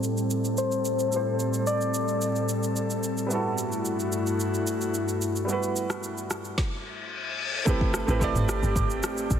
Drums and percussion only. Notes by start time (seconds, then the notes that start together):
0.03 shaker
0.17 shaker
0.30 shaker
0.44 shaker
0.57 shaker
0.72 shaker
0.85 shaker
0.99 shaker
1.12 shaker
1.40 shaker
1.54 shaker
1.67 shaker
1.81 shaker
1.94 shaker
2.08 shaker
2.21 shaker
2.36 shaker
2.49 shaker
2.63 shaker
2.76 shaker
2.90 shaker
3.03 shaker
3.17 shaker
3.31 shaker
3.58 shaker
3.72 shaker
3.85 shaker
3.99 shaker
4.12 shaker
4.27 shaker
4.40 shaker
4.54 shaker
4.67 shaker
4.81 shaker
4.94 shaker
5.08 shaker
5.22 shaker
5.36 shaker
5.49 shaker
5.63 shaker
5.76 shaker
5.90 cross-stick, shaker
6.03 shaker
6.18 shaker
6.31 cross-stick, shaker
6.45 shaker
6.58 kick, snare
7.67 kick, shaker
7.81 kick
7.94 cross-stick, shaker
8.08 shaker
8.21 kick, shaker
8.36 mid tom, shaker
8.49 cross-stick, shaker
8.63 shaker
8.76 kick, mid tom, shaker
8.90 shaker
9.03 cross-stick, shaker
9.18 shaker
9.30 kick, shaker